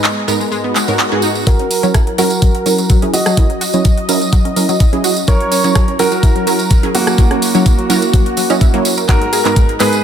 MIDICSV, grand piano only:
0, 0, Header, 1, 2, 480
1, 0, Start_track
1, 0, Tempo, 476190
1, 1481, Time_signature, 4, 2, 24, 8
1, 10118, End_track
2, 0, Start_track
2, 0, Title_t, "Grand piano"
2, 0, Program_c, 0, 0
2, 1479, Note_on_c, 0, 66, 72
2, 1481, Note_on_c, 0, 70, 91
2, 2109, Note_off_c, 0, 66, 0
2, 2110, Note_off_c, 0, 70, 0
2, 2202, Note_on_c, 0, 66, 72
2, 2202, Note_on_c, 0, 70, 88
2, 3071, Note_off_c, 0, 66, 0
2, 3071, Note_off_c, 0, 70, 0
2, 3160, Note_on_c, 0, 66, 73
2, 3160, Note_on_c, 0, 75, 86
2, 5230, Note_off_c, 0, 66, 0
2, 5230, Note_off_c, 0, 75, 0
2, 5322, Note_on_c, 0, 70, 73
2, 5323, Note_on_c, 0, 73, 95
2, 5951, Note_off_c, 0, 70, 0
2, 5951, Note_off_c, 0, 73, 0
2, 6043, Note_on_c, 0, 66, 74
2, 6043, Note_on_c, 0, 70, 90
2, 6911, Note_off_c, 0, 66, 0
2, 6911, Note_off_c, 0, 70, 0
2, 7002, Note_on_c, 0, 58, 72
2, 7003, Note_on_c, 0, 66, 89
2, 9071, Note_off_c, 0, 58, 0
2, 9071, Note_off_c, 0, 66, 0
2, 9161, Note_on_c, 0, 70, 89
2, 9162, Note_on_c, 0, 66, 68
2, 9790, Note_off_c, 0, 70, 0
2, 9791, Note_off_c, 0, 66, 0
2, 9881, Note_on_c, 0, 71, 83
2, 9882, Note_on_c, 0, 68, 68
2, 10103, Note_off_c, 0, 68, 0
2, 10103, Note_off_c, 0, 71, 0
2, 10118, End_track
0, 0, End_of_file